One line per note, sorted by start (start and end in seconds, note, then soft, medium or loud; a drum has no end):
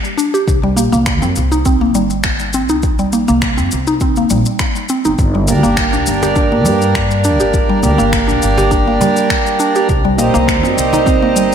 0.05 shaker soft
0.18 0.32 D4 medium
0.18 shaker medium
0.34 0.47 G4 medium
0.34 shaker soft
0.48 0.78 C2 medium
0.48 kick loud
0.48 shaker soft
0.63 0.76 G3 medium
0.77 0.89 A#1 loud
0.77 0.91 A#3 medium
0.77 shaker medium
0.92 1.23 C2 medium
0.92 1.21 A#3 medium
0.92 shaker soft
1.06 finger snap medium
1.06 kick loud
1.06 shaker soft
1.22 1.32 F#2 medium
1.22 1.35 C4 medium
1.22 shaker soft
1.36 1.96 C2 medium
1.36 shaker medium
1.52 1.65 D#4 medium
1.52 shaker soft
1.65 1.81 C4 medium
1.65 kick medium
1.65 shaker soft
1.81 1.94 A#3 medium
1.95 2.70 G1 medium
1.95 2.10 G3 medium
1.95 shaker medium
2.10 shaker soft
2.24 finger snap medium
2.24 kick medium
2.24 shaker soft
2.39 shaker soft
2.53 2.68 C4 medium
2.53 shaker medium
2.69 3.13 C2 medium
2.69 2.83 D#4 medium
2.69 shaker soft
2.83 kick loud
2.83 shaker soft
2.99 3.11 G3 medium
2.99 shaker soft
3.13 3.24 A#1 medium
3.13 3.27 A#3 medium
3.13 shaker medium
3.28 3.60 C2 medium
3.28 3.56 A#3 loud
3.28 shaker soft
3.42 finger snap loud
3.42 kick loud
3.42 shaker soft
3.57 3.68 F#2 medium
3.57 3.71 C4 medium
3.57 shaker soft
3.71 4.24 C2 medium
3.71 shaker medium
3.87 4.00 D#4 medium
3.87 shaker soft
4.00 4.16 C4 medium
4.00 kick medium
4.00 shaker soft
4.16 4.29 A#3 medium
4.16 shaker soft
4.30 4.42 A#1 medium
4.30 4.45 G3 medium
4.30 shaker medium
4.46 shaker soft
4.59 finger snap medium
4.59 kick medium
4.59 shaker soft
4.75 shaker soft
4.89 5.04 C4 medium
4.89 shaker medium
5.05 5.15 G1 medium
5.05 5.18 D#4 medium
5.05 shaker soft
5.19 5.50 G1 medium
5.19 kick loud
5.19 shaker soft
5.35 5.47 G3 medium
5.46 5.59 D2 loud
5.46 7.79 G3 medium
5.46 7.80 A#3 medium
5.46 5.62 A#3 medium
5.46 7.80 D4 medium
5.46 7.81 A#4 medium
5.46 cajon slap medium
5.46 shaker medium
5.63 5.96 G1 medium
5.63 5.91 A#3 medium
5.63 shaker soft
5.77 finger snap loud
5.77 kick loud
5.77 shaker soft
5.93 6.03 C2 medium
5.93 6.06 D4 medium
5.93 shaker soft
6.06 6.66 G1 medium
6.06 shaker medium
6.23 6.36 G4 medium
6.23 cajon bass medium
6.23 cajon slap medium
6.23 shaker soft
6.36 6.51 D4 medium
6.36 kick loud
6.36 shaker soft
6.52 6.64 A#3 medium
6.65 7.41 G2 medium
6.65 6.81 G3 medium
6.65 shaker medium
6.82 shaker soft
6.95 finger snap medium
6.95 kick medium
6.95 shaker soft
7.11 shaker soft
7.24 7.39 D4 medium
7.24 shaker medium
7.40 7.85 G1 medium
7.40 7.53 G4 medium
7.40 shaker soft
7.54 kick loud
7.54 shaker soft
7.69 7.82 G3 medium
7.82 7.94 D2 loud
7.82 9.87 G3 medium
7.82 7.97 A#3 medium
7.82 9.87 A#3 medium
7.82 9.88 D4 medium
7.82 cajon slap medium
7.82 shaker medium
7.86 9.89 A#4 medium
7.98 8.31 G1 medium
7.98 8.27 A#3 loud
7.98 shaker soft
8.13 finger snap loud
8.13 kick loud
8.13 shaker soft
8.28 8.39 C2 medium
8.28 8.41 D4 medium
8.28 shaker soft
8.42 8.95 G1 medium
8.42 shaker medium
8.58 8.71 G4 medium
8.58 cajon bass medium
8.58 cajon slap medium
8.58 shaker soft
8.71 8.86 D4 medium
8.71 kick loud
8.71 shaker soft
8.88 9.00 A#3 medium
9.01 9.16 G3 medium
9.01 cajon bass medium
9.01 shaker medium
9.17 shaker soft
9.30 finger snap medium
9.30 kick loud
9.30 shaker soft
9.46 shaker soft
9.60 9.74 D4 medium
9.60 shaker medium
9.75 9.89 G4 medium
9.75 shaker soft
9.89 10.19 C2 medium
9.89 kick loud
9.89 shaker soft
10.05 10.17 G3 medium
10.16 10.30 A#1 medium
10.16 11.55 G3 medium
10.16 10.33 A#3 medium
10.16 11.55 C4 medium
10.16 11.55 D#4 medium
10.16 cajon slap medium
10.16 shaker medium
10.20 11.55 A#4 medium
10.34 10.64 C2 medium
10.34 10.62 A#3 loud
10.34 shaker soft
10.48 finger snap loud
10.48 kick loud
10.48 shaker soft
10.63 10.73 F#2 medium
10.63 10.77 C4 medium
10.63 shaker soft
10.77 11.36 C2 medium
10.77 shaker medium
10.93 11.06 D#4 medium
10.93 cajon bass medium
10.93 cajon slap medium
10.93 shaker soft
11.06 11.21 C4 medium
11.06 kick loud
11.06 shaker soft
11.22 11.35 A#3 medium
11.36 11.55 G1 medium
11.36 11.51 G3 medium
11.36 shaker medium